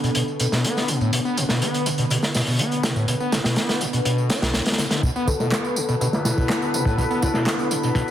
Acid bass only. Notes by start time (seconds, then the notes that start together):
0.04 B2
0.16 B2
0.40 B2
0.52 B2
0.64 B3
0.89 B2
1.01 A2
1.13 B2
1.25 B3
1.37 B2
1.50 B2
1.62 B3
1.86 B2
1.99 B2
2.11 B2
2.35 B2
2.48 B2
2.59 B3
2.84 B2
2.96 A2
3.08 B2
3.20 B3
3.33 B2
3.45 B2
3.57 B3
3.81 B2
3.93 B2
4.05 B2
4.30 D4
4.42 B1
4.54 B1
4.79 D3
4.91 D3
5.03 B2
5.16 B3
5.28 B2
5.41 B2
5.52 B3
5.76 B2
5.89 B2
6.01 B2
6.25 B2
6.38 B2
6.50 B3
6.74 B2
6.86 A2
6.98 B2
7.10 B3
7.22 B2
7.35 B2
7.47 B3
7.71 B2
7.83 B2
7.95 B2